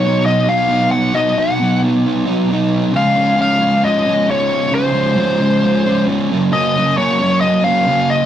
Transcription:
Already playing: distorted electric guitar B2, lead electric guitar C#5
0.03 distorted electric guitar F#3 B3 D#4
0.26 lead electric guitar D#5
0.47 distorted electric guitar F#3 B3 D#4, lead electric guitar F5
0.68 distorted electric guitar B2 F#3 B3 D#4
0.91 lead electric guitar F#5
1.12 distorted electric guitar B2 F#3 B3 D#4, lead electric guitar D#5
1.36 distorted electric guitar F#3 B3 D#4, lead electric guitar F#5
1.60 distorted electric guitar B2 F#3 B3 D#4
1.82 distorted electric guitar F#3 B3 D#4
2.25 distorted electric guitar F#3 B3 D#4
2.49 distorted electric guitar B2 F#3 B3 D#4
2.93 distorted electric guitar C#3 F3 G#3 C#4, lead electric guitar F5
3.15 distorted electric guitar F3 G#3 C#4
3.36 distorted electric guitar C#3 F3 G#3 C#4
3.41 lead electric guitar F5
3.60 distorted electric guitar F3 G#3 C#4
3.84 lead electric guitar D#5
4.05 distorted electric guitar F3 G#3 C#4
4.27 distorted electric guitar C#3 F3 G#3 C#4, lead electric guitar C#5
4.71 distorted electric guitar C#3 F3 G#3 C#4, lead electric guitar C5
4.92 distorted electric guitar F3 G#3 C#4
5.15 distorted electric guitar C#3 F3 G#3 C#4
5.39 distorted electric guitar F3 G#3 C#4
5.86 distorted electric guitar F3 G#3 C#4
6.06 distorted electric guitar C#3 F3 G#3
6.11 distorted electric guitar C#4
6.30 distorted electric guitar F#2 C#3 F#3 A#3 C#4
6.51 distorted electric guitar F#2 C#3 F#3 A#3 C#4, lead electric guitar D#5
6.76 distorted electric guitar F#3 A#3 C#4
6.97 distorted electric guitar F#2 C#3 F#3 A#3 C#4, lead electric guitar C#5
7.19 distorted electric guitar F#3 A#3 C#4
7.41 lead electric guitar D#5
7.62 distorted electric guitar F#3 A#3 C#4, lead electric guitar F5
7.86 distorted electric guitar C#3 F#3 A#3 C#4
8.10 lead electric guitar D#5

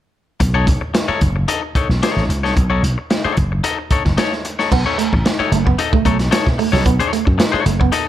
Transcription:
0.40 slap bass B1, muted clean electric guitar stroke, kick, closed hi-hat
0.54 clean electric guitar D#4 A4 C#5
0.67 slap bass B1, muted clean electric guitar stroke, kick, closed hi-hat
0.81 muted clean electric guitar stroke
0.94 muted clean electric guitar stroke, snare, closed hi-hat
1.08 clean electric guitar D#4 A4 C#5, muted slap bass stroke
1.21 slap bass F#1, muted clean electric guitar stroke, kick, closed hi-hat
1.36 muted clean electric guitar stroke
1.48 clean electric guitar D#4 A4 D#5, closed hi-hat
1.62 muted clean electric guitar stroke
1.75 clean electric guitar D#4 A4 C#5, muted slap bass stroke, kick, closed hi-hat
1.89 slap bass B1, muted clean electric guitar stroke, snare
2.03 clean electric guitar D#4 A4 C#5, snare, closed hi-hat
2.16 slap bass A1, snare
2.29 slap bass C#2, muted clean electric guitar stroke, closed hi-hat
2.43 slap bass C2, clean electric guitar D#4 A4 C#5, snare
2.56 slap bass B1, muted clean electric guitar stroke, kick, closed hi-hat
2.70 clean electric guitar D#4 A4 C#5
2.83 slap bass B1, muted clean electric guitar stroke, closed hi-hat
2.98 muted clean electric guitar stroke
3.10 muted clean electric guitar stroke, snare, closed hi-hat
3.24 clean electric guitar D#4 A4 C#5, muted slap bass stroke
3.37 slap bass F#1, muted clean electric guitar stroke, kick, closed hi-hat
3.52 muted clean electric guitar stroke
3.64 clean electric guitar D#4 A4 D#5, closed hi-hat
3.78 muted clean electric guitar stroke
3.91 clean electric guitar D#4 A4 C#5, muted slap bass stroke, kick, closed hi-hat
4.05 slap bass F#1, kick, snare
4.17 clean electric guitar D#4 A4 C#5, snare, closed hi-hat
4.33 snare
4.45 muted clean electric guitar stroke, closed hi-hat
4.59 clean electric guitar D#4 A4 C#5, snare
4.71 slap bass B1, clean electric guitar B3, muted clean electric guitar stroke, kick, crash
4.86 clean electric guitar D#4 A4 C#5, muted clean electric guitar stroke
4.98 clean electric guitar A3, muted clean electric guitar stroke, closed hi-hat
5.13 slap bass A1, muted clean electric guitar stroke, kick
5.26 muted clean electric guitar stroke, snare, closed hi-hat
5.39 clean electric guitar D#4 A4 C#5, muted slap bass stroke
5.52 slap bass F#1, clean electric guitar A3, closed hi-hat
5.66 clean electric guitar B3, muted clean electric guitar stroke, kick
5.79 clean electric guitar D#4 A4 D#5, muted clean electric guitar stroke, closed hi-hat
5.93 clean electric guitar A3, muted clean electric guitar stroke, kick
6.05 slap bass B1, clean electric guitar A3 D#4 A4 C#5, kick, closed hi-hat
6.19 snare, closed hi-hat
6.31 clean electric guitar D#4 A4 C#5, muted clean electric guitar stroke, snare, closed hi-hat
6.47 slap bass B2, kick, snare
6.58 clean electric guitar A3, muted clean electric guitar stroke, open hi-hat
6.72 slap bass C2, clean electric guitar F#3 D#4 A4 C#5, snare
6.85 slap bass B1, clean electric guitar B3, muted clean electric guitar stroke, kick, closed hi-hat
7.00 clean electric guitar D#4 A4 C#5, muted clean electric guitar stroke, closed hi-hat
7.13 clean electric guitar A3, closed hi-hat
7.25 slap bass F#2, muted clean electric guitar stroke, kick
7.38 muted clean electric guitar stroke, snare, closed hi-hat
7.52 clean electric guitar D#4 A4 C#5, muted slap bass stroke
7.66 slap bass F#1, clean electric guitar A3, closed hi-hat
7.80 clean electric guitar B3, muted clean electric guitar stroke, kick
7.92 clean electric guitar D#4 A4 D#5, muted clean electric guitar stroke, closed hi-hat

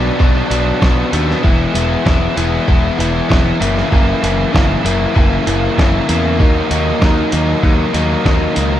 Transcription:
Already playing: overdriven electric guitar B2 F#3 B3 D4
0.19 picked electric bass B1, overdriven electric guitar B2 F#3 B3 D4, kick
0.50 picked electric bass B1, overdriven electric guitar B2 F#3 B3 D4, closed hi-hat
0.81 picked electric bass B1, overdriven electric guitar B2 F#3 B3 D4, kick, snare
1.13 picked electric bass D#2, overdriven electric guitar B2 F#3 B3 D4, closed hi-hat
1.30 snare
1.43 picked electric bass E1, overdriven electric guitar E3 G#3 B3 E4, kick
1.73 picked electric bass E1, overdriven electric guitar E3 G#3 B3 E4, closed hi-hat
2.05 picked electric bass E1, overdriven electric guitar E3 G#3 B3 E4, kick, snare
2.36 picked electric bass E1, overdriven electric guitar E3 G#3 B3 E4, closed hi-hat
2.68 picked electric bass E1, overdriven electric guitar E3 G#3 B3 E4, kick
2.99 picked electric bass E1, overdriven electric guitar E3 G#3 B3 E4, closed hi-hat
3.29 picked electric bass E1, overdriven electric guitar E3 G#3 B3 E4, kick, snare
3.60 picked electric bass F#1, overdriven electric guitar F#2 C#3 E3 A#3 E4, closed hi-hat
3.77 snare
3.91 picked electric bass F#1, overdriven electric guitar F#2 C#3 E3 A#3 E4, kick
4.21 picked electric bass F#1, overdriven electric guitar F#2 C#3 E3 A#3 E4, closed hi-hat
4.52 picked electric bass F#1, overdriven electric guitar F#2 C#3 E3 A#3 E4, kick, snare
4.84 picked electric bass F#1, overdriven electric guitar F#2 C#3 E3 A#3 E4, closed hi-hat
5.15 picked electric bass F#1, overdriven electric guitar F#2 C#3 E3 A#3 E4, kick
5.45 picked electric bass F#1, overdriven electric guitar F#2 C#3 E3 A#3 E4, closed hi-hat
5.77 picked electric bass F#1, overdriven electric guitar F#2 C#3 E3 A#3 E4, kick, snare
6.07 picked electric bass E2, overdriven electric guitar F#2 C#3 E3 A#3 E4, closed hi-hat
6.38 picked electric bass D#2, overdriven electric guitar D#3 F#3 A#3 D#4, kick
6.70 picked electric bass D#2, overdriven electric guitar D#3 F#3 A#3 D#4, closed hi-hat
7.01 picked electric bass D#2, overdriven electric guitar D#3 F#3 A#3 D#4, kick, snare
7.32 picked electric bass D#2, overdriven electric guitar D#3 F#3 A#3 D#4, closed hi-hat
7.63 picked electric bass D#2, overdriven electric guitar D#3 F#3 A#3 D#4, kick
7.93 picked electric bass D#2, overdriven electric guitar D#3 F#3 A#3 D#4, closed hi-hat
8.24 picked electric bass D#2, overdriven electric guitar D#3 F#3 A#3 D#4, kick, snare
8.55 picked electric bass C#2, overdriven electric guitar D#3 F#3 A#3 D#4, closed hi-hat

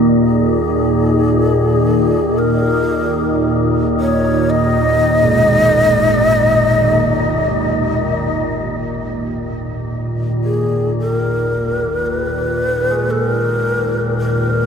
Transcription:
Already playing: synth drone D#2 A#2, ambient pad A#3 D#4 D#5 A#5, synth texture D#4 D#5
0.26 shakuhachi G#4
2.38 shakuhachi A#4
4.00 shakuhachi C#5
4.50 shakuhachi D#5
5.23 church bells G#2
8.79 synth drone D#2 A#2, synth texture D#4 D#5
10.44 shakuhachi G#4
11.00 shakuhachi A#4
12.06 shakuhachi B4
12.91 church bells G#4
13.11 shakuhachi A4
13.29 shakuhachi A#4
14.19 shakuhachi A#4

